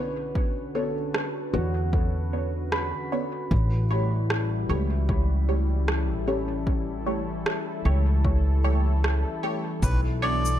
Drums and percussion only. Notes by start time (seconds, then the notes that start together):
0.35 kick
1.14 cross-stick
1.93 kick
2.72 cross-stick
3.51 kick
4.30 cross-stick
5.09 kick
5.88 cross-stick
6.67 kick
7.46 cross-stick
8.25 kick
9.04 cross-stick
9.83 kick, shaker
10.45 shaker